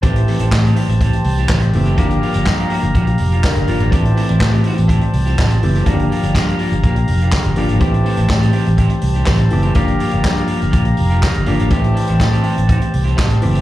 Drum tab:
HH |xxox-xoxxxox-xox|xxox-xoxxxox-xox|xxox-xoxxxox-xox|xxox-xoxxxox-xox|
CP |----x-------x---|----x-------x---|----x-------x---|----x-------x---|
SD |----o-------o---|----o-------o---|----o-------o---|----o-------o---|
BD |o---o---o---o---|o---o---o---o---|o---o---o---o---|o---o---o---o---|

HH |xxox-xoxxxox-xox|xxox-xoxxxox-xox|xxox-xoxxxox-xox|
CP |----x-------x---|----x-------x---|----x-------x---|
SD |----o-------o---|----o-------o---|----o-------o---|
BD |o---o---o---o---|o---o---o---o---|o---o---o---o---|